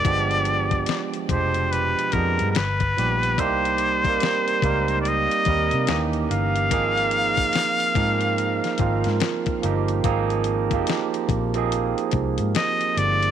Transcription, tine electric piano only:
X:1
M:4/4
L:1/16
Q:"Swing 16ths" 1/4=72
K:Ab
V:1 name="Tine electric piano"
[F,A,=B,=DG]4- [F,A,B,DG] z [=B,,F,A,DG]4 [F,A,B,DA]2 z2 [F,G,B,^DG]2 | [G,B,CEG]3 [G,B,CEB]3 [G,B,CEB]4 [G,B,CEB]2 [_F,B,DEG]4 | [F,B,CEA]4- [F,B,CEA] z [F,B,CEB]4 [F,B,CEF]4 [F,B,CEG]2 | [F,B,CEA]3 [F,B,CEG]4 [F,B,CEA]6- [F,B,CEA] z2 |]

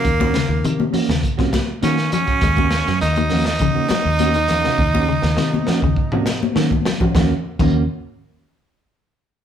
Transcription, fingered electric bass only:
X:1
M:4/4
L:1/16
Q:1/4=102
K:Ebdor
V:1 name="Fingered electric bass" clef=bass
E,,3 E,, C,2 z E,, z C,2 z E,2 z2 | E,,3 G,, E,,6 z E,,4- E,, | E,,3 E,, C,2 z E,, z C,2 z E,2 z2 | E,, z2 E,,2 z8 z3 |]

